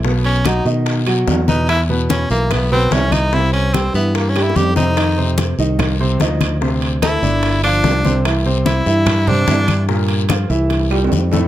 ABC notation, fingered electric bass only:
X:1
M:4/4
L:1/8
Q:1/4=146
K:C
V:1 name="Fingered electric bass" clef=bass
B,,,3 B,,3 E,,2- | E,,3 B,,,3 C,,2- | C,,3 G,,3 F,,2- | F,,3 C,,3 D,,2- |
D,,3 G,,,3 C,,2- | C,,3 G,,3 G,,2- | G,,3 C,,3 F,,2 |]